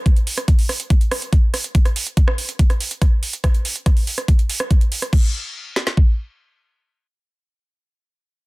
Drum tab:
CC |----------------|----------------|----------------|x---------------|
HH |xxoxxooxxxoxx-ox|xxoxx-oxxxoxx-ox|xxoxxooxxxoxxxox|----------------|
SD |---r--r---r---r-|-r---r---r--r---|r---r--r---r---r|------oo--------|
BD |o---o---o---o---|o---o---o---o---|o---o---o---o---|o-------o-------|

CC |----------------|
HH |----------------|
SD |----------------|
BD |----------------|